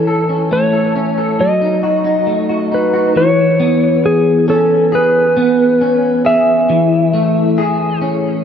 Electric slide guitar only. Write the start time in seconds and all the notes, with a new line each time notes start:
Already playing: A4
0.53 C#5
1.41 D#5
2.74 B4
3.17 C#5
4.06 G#4
4.50 A4
4.95 B4
6.26 E5